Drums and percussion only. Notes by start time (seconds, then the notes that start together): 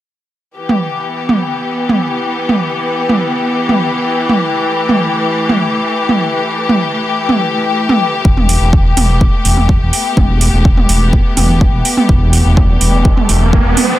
0.69 mid tom
1.29 mid tom
1.89 mid tom
2.49 mid tom
3.09 mid tom
3.69 mid tom
4.29 mid tom
4.89 mid tom
5.49 mid tom
6.09 mid tom
6.69 mid tom
7.29 mid tom
7.89 mid tom
8.25 kick
8.37 mid tom
8.49 open hi-hat
8.73 kick
8.97 mid tom, open hi-hat
9.21 kick
9.45 open hi-hat
9.57 mid tom
9.69 kick
9.93 open hi-hat
10.17 kick, mid tom
10.41 open hi-hat
10.65 kick
10.77 mid tom
10.89 open hi-hat
11.13 kick
11.37 mid tom, open hi-hat
11.61 kick
11.85 open hi-hat
11.97 mid tom
12.09 kick
12.33 open hi-hat
12.57 kick, mid tom
12.81 open hi-hat
13.05 kick
13.17 mid tom
13.29 open hi-hat
13.53 kick
13.77 mid tom, open hi-hat